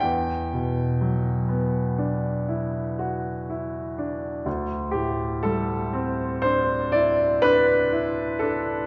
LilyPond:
\new Staff \with { instrumentName = "Grand piano" } { \time 9/8 \key e \minor \tempo 4. = 41 << { g''2. r4. | r8 g'8 a'4 c''8 d''8 b'4 a'8 | } \\ { e,8 b,8 fis8 b8 d'8 e'8 fis'8 e'8 d'8 | d,8 a,8 g8 c'8 d'8 e'8 d'8 e'8 d'8 | } >> }